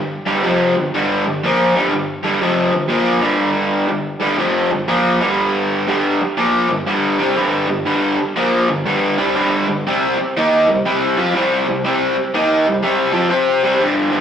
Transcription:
Already playing: G2 D3
0.26 G2 D3 G3
0.43 F2 C3 F3
0.76 G2 D3
0.94 G2 D3 G3
1.26 G2 D3
1.44 A#2 F3 A#3
1.75 G2 D3 G3
1.92 G2 D3
2.23 G2 D3 G3
2.41 F2 C3 F3
2.72 G2 D3
2.89 A#2 F3 A#3
3.22 G2 D3 G3
3.88 G2 D3
4.20 G2 D3 G3
4.38 F2 C3 F3
4.71 G2 D3
4.88 A#2 F3 A#3
5.20 G2 D3 G3
5.88 G2 D3 G3
6.22 muted overdriven electric guitar stroke
6.38 A#2 F3 A#3
6.68 G2 D3
6.87 G2 D3 G3
7.19 C3 G3 C4
7.36 G2 D3 G3
7.67 G2 D3
7.86 G2 D3 G3
8.18 muted overdriven electric guitar stroke
8.36 A#2 F3 A#3
8.68 G2 D3
8.86 G2 D3 G3
9.18 C3 G3 C4
9.35 G2 D3 G3
9.68 G2 D3
9.87 C3 G3 C4
10.18 muted overdriven electric guitar stroke
10.37 D#3 A#3 D#4
10.68 C3 G3
10.85 C3 G3 C4
11.18 F3 C4 F4
11.35 C3 G3 C4
11.68 C3 G3
11.84 C3 G3 C4
12.16 muted overdriven electric guitar stroke
12.34 D#3 A#3 D#4
12.67 C3 G3
12.83 C3 G3 C4
13.13 F3 C4 F4
13.29 C4 G4 C5
13.63 C3 G3 C4
13.80 G2 D3
14.12 G2 D3

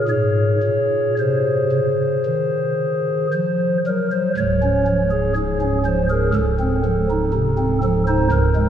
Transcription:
0.09 G#2 G#4 C#5
0.63 A#2
1.19 C3 C5
1.72 C#3
2.25 D#3
3.33 F3 C5
3.86 F#3 A#4
4.11 C5
4.37 C#1 C#2 C#5
4.62 C#4
4.87 F3
5.11 G#4
5.36 G#2 G#4
5.61 C#4
5.85 F3 C5
6.10 G#4 A#4
6.34 C#1 C#2 A4
6.59 C4
6.85 F3
7.10 D#4
7.33 C3
7.58 C4
7.83 F3 A4
8.07 D#4 C5
8.31 C#1 C#2 A#4
8.55 G#3

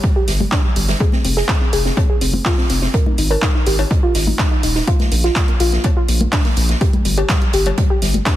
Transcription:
0.03 G3, kick, closed hi-hat
0.16 G4
0.28 G1 G3, snare, closed hi-hat, open hi-hat
0.40 G3, high conga
0.52 D4, kick, snare, clap, closed hi-hat
0.64 G3
0.76 G1 G3, closed hi-hat, open hi-hat
0.88 G3, snare, closed hi-hat
1.00 G#4, kick, closed hi-hat
1.12 C4, snare, high conga
1.25 F1 C4, closed hi-hat, open hi-hat
1.37 G#4, snare
1.49 C4, kick, snare, clap, closed hi-hat
1.61 C4
1.73 F1 G#4, closed hi-hat, open hi-hat
1.85 C4, snare
1.97 C4, kick, closed hi-hat, cowbell
2.09 G#4
2.21 F1 C4, closed hi-hat, open hi-hat
2.33 C4, high conga
2.45 F4, kick, snare, clap, open hi-hat
2.58 C4, snare
2.70 F1 C4, snare, closed hi-hat, open hi-hat
2.82 C4, snare
2.94 A#4, kick, closed hi-hat
3.06 D#4, high conga
3.18 G#1 D#4, closed hi-hat, open hi-hat
3.30 A#4, cowbell
3.42 D#4, kick, snare, clap, closed hi-hat
3.55 D#4
3.66 G#1 G4, closed hi-hat, open hi-hat
3.79 D#4, cowbell
3.91 D#4, kick, closed hi-hat
4.03 F4
4.15 G#1 D#4, snare, closed hi-hat, open hi-hat
4.27 D#4, high conga
4.39 D#4, kick, snare, clap, closed hi-hat
4.51 D#4
4.63 D#1 D#4, closed hi-hat, open hi-hat
4.75 D#4, snare
4.87 F4, kick, closed hi-hat
4.99 A#3, snare, closed hi-hat, high conga
5.12 A#1 A#3, closed hi-hat, open hi-hat
5.24 F4, snare, closed hi-hat
5.36 A#3, kick, snare, clap, closed hi-hat
5.48 A#3, closed hi-hat
5.60 A#1 F4, closed hi-hat, open hi-hat
5.72 A#3, snare, closed hi-hat
5.84 A#3, kick, closed hi-hat, cowbell
5.97 F4
6.08 A#1 A#3, closed hi-hat, open hi-hat
6.21 A#3, closed hi-hat, high conga
6.32 D4, kick, snare, clap, closed hi-hat, open hi-hat
6.45 A#3, snare, closed hi-hat
6.56 A#1 A#3, snare, closed hi-hat, open hi-hat
6.69 A#3, snare, closed hi-hat
6.81 G4, kick, closed hi-hat
6.93 G3, closed hi-hat, high conga
7.05 G1 G3, closed hi-hat, open hi-hat
7.18 G4, closed hi-hat, cowbell
7.29 G3, kick, snare, clap, closed hi-hat
7.42 G3, closed hi-hat
7.53 G1 G4, closed hi-hat, open hi-hat
7.66 G3, closed hi-hat, cowbell
7.77 G3, kick, closed hi-hat
7.90 G4
8.02 G1 G3, snare, closed hi-hat, open hi-hat
8.14 G3, closed hi-hat, high conga
8.26 D4, kick, snare, clap, closed hi-hat

